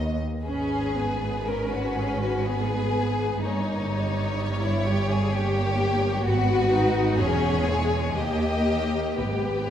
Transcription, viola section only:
0.46 C#4
0.96 B3
1.48 C#4
2.46 B3
3.43 A#3
3.91 G3
5.36 A#3
6.27 B3
6.74 D#4
7.20 C#4
7.68 G#3
8.17 A#3
9.21 B3

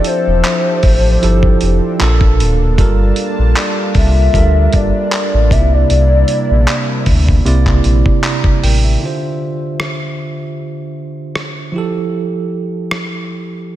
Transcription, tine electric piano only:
Already playing: F3 E4 G4 A4
1.21 F3 E4 G4 A4
1.99 A#2 A#3 D4 A4
2.78 G3 F4 A4 A#4
4.33 G3 F4 A4 A#4
5.50 C3 A#3 D#4 D5
5.58 E4
7.45 C3 A#3 E4 D5
8.24 D5 A#5
8.63 A#4 G5
8.85 G4 E5
8.99 D3 D4
9.04 F4 C5
11.72 F3 E4
11.76 G4 A4

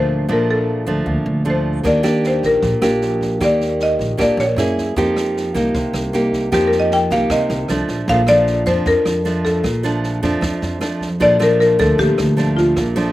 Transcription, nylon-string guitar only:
Already playing: A#2 F3 A3 D4
0.28 A#2 F3 A3 D4
0.87 F3 A3 D4
1.06 A#2
1.45 F3 A3 D4
1.83 D#3 A#3 D4 G4
2.03 A#3 D4 G4
2.63 A#2
2.82 A#3 D4 G4
3.40 D#3 A#3 G4
4.17 A#2 A#3 D4 G4
4.58 A#3 E4 G#4
4.96 F3 A#3 D#4 G4
5.54 A#3 D#4 G4
5.75 C3
6.13 A#3 D#4 G4
6.52 F3 A#3 D#4 G4
7.11 A#3 D#4 G4
7.30 C3
7.69 F3 A3 D4
8.09 A#2 F3 A3 D4
8.28 F3 A3 D4
8.66 F3 D4
8.86 F2
9.25 F3 A3 D4
9.64 A#2
9.83 F3 A3 D4
10.23 F3 A3 D4
10.41 F2
10.81 F3 A3 D4
11.20 A#2 F3 A3 D4
11.39 F3 A3 D4
11.79 F3 A3 D4
11.98 A#2
12.37 F3 A3 D4
12.77 A#2
12.96 F3 A3 D4

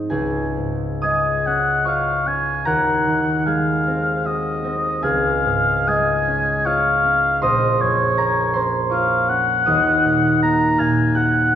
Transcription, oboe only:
1.03 G#5
1.47 F#5
1.87 F5
2.27 G#5
2.67 F#5
3.46 F5
4.26 D#5
5.03 F5
5.88 G#5
6.66 F5
7.43 D#5
7.81 C#5
8.92 F5
9.29 F#5
10.43 A#5
10.80 G#5
11.16 F#5

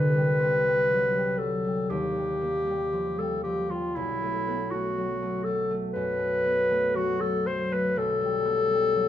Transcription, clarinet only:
Already playing: B4
1.38 A4
1.90 G4
3.19 A4
3.43 G4
3.71 F4
3.96 E4
4.71 F#4
5.44 A4
5.93 B4
6.96 F#4
7.21 A4
7.47 C5
7.73 B4
7.98 A4

